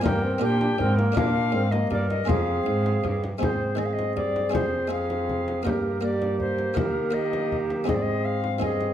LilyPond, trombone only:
\new Staff \with { instrumentName = "Trombone" } { \time 3/4 \key g \phrygian \tempo 4 = 162 bes8 c'8 d'8 d'8 c'8 bes8 | d'4 c'8 bes4 r8 | c'2~ c'8 r8 | c'4 c'2 |
c'4 c'2 | bes4 bes2 | bes4 bes2 | c'2 c'4 | }